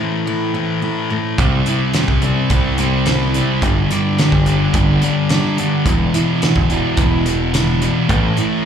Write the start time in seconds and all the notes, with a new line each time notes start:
Already playing: A2 C4 E4
0.00 E3 A3
0.26 A2 E3 A3 E4
0.54 A2 E3 A3 C4
0.82 A2 E3 A3 E4
1.10 A2 E3 A3
1.38 C2 C3 G3 C4, kick, closed hi-hat
1.66 C3 G3 C4 E4, closed hi-hat
1.94 C3 G3 C4, snare, closed hi-hat
2.08 C2, kick
2.22 C3 G3 C4, closed hi-hat
2.50 C2 C3 G3 C4 E4, kick, closed hi-hat
2.78 C3 G3 C4, closed hi-hat
3.06 C3 G3 C4 E4, snare, closed hi-hat
3.34 C3 G3 C4, closed hi-hat
3.62 G1 G2 D3 G3, kick, closed hi-hat
3.90 G2 D3 G3 G4, closed hi-hat
4.18 G2 D3 G3 D4, snare, closed hi-hat
4.32 G1, kick
4.46 G2 D3 G3 B3, closed hi-hat
4.74 G1 G2 D3 G3 G4, kick, closed hi-hat
5.02 G2 D3 G3 D4, closed hi-hat
5.29 G2 D3 G3 G4, snare, closed hi-hat
5.58 G2 D3 G3 B3, closed hi-hat
5.86 E1 E2 B2 E3, kick, closed hi-hat
6.14 E2 B2 E3 E4, closed hi-hat
6.42 E2 B2 E3 B3, snare, closed hi-hat
6.56 E1, kick
6.69 E2 B2 E3 G3, closed hi-hat
6.97 E1 E2 B2 E3 E4, kick, closed hi-hat
7.26 E2 B2 E3 B3, closed hi-hat
7.54 E2 B2 E3 E4, snare, closed hi-hat
7.81 E2 B2 E3 G3, closed hi-hat
8.08 A1 A2 E3 A3, kick, closed hi-hat
8.37 A2 E3 A3 E4, closed hi-hat